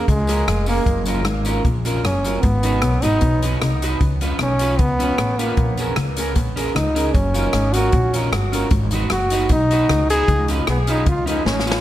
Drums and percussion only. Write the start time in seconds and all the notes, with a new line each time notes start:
0.08 kick, closed hi-hat
0.27 closed hi-hat, tambourine
0.48 cross-stick, closed hi-hat
0.66 open hi-hat, tambourine
0.86 kick, closed hi-hat
1.06 closed hi-hat, tambourine
1.25 cross-stick, closed hi-hat
1.45 closed hi-hat, tambourine
1.65 kick, closed hi-hat
1.85 closed hi-hat, tambourine
2.05 cross-stick, closed hi-hat
2.24 closed hi-hat, tambourine
2.43 kick, closed hi-hat
2.63 closed hi-hat, tambourine
2.82 cross-stick, closed hi-hat
3.02 closed hi-hat, tambourine
3.21 kick, closed hi-hat
3.42 closed hi-hat, tambourine
3.62 cross-stick, closed hi-hat
3.82 closed hi-hat, tambourine
4.01 kick, closed hi-hat
4.21 closed hi-hat, tambourine
4.39 cross-stick, closed hi-hat
4.59 closed hi-hat, tambourine
4.79 kick, closed hi-hat
5.00 closed hi-hat, tambourine
5.18 cross-stick, closed hi-hat
5.39 closed hi-hat, tambourine
5.57 kick, closed hi-hat
5.77 closed hi-hat, tambourine
5.96 cross-stick, closed hi-hat
6.17 closed hi-hat, tambourine
6.36 kick, closed hi-hat
6.57 closed hi-hat, tambourine
6.76 cross-stick, closed hi-hat
6.96 closed hi-hat, tambourine
7.15 kick, closed hi-hat
7.34 closed hi-hat, tambourine
7.53 cross-stick, closed hi-hat
7.74 closed hi-hat, tambourine
7.92 kick, closed hi-hat
8.14 closed hi-hat, tambourine
8.33 cross-stick, closed hi-hat
8.53 closed hi-hat, tambourine
8.71 kick, closed hi-hat
8.91 closed hi-hat, tambourine
9.10 cross-stick, closed hi-hat
9.30 closed hi-hat, tambourine
9.49 kick, closed hi-hat
9.71 closed hi-hat, tambourine
9.89 cross-stick, closed hi-hat
10.10 closed hi-hat, tambourine
10.28 kick, closed hi-hat
10.48 closed hi-hat, tambourine
10.67 cross-stick, closed hi-hat
10.87 closed hi-hat, tambourine
11.06 kick, closed hi-hat
11.27 closed hi-hat, tambourine
11.46 snare
11.59 snare
11.67 tambourine
11.72 snare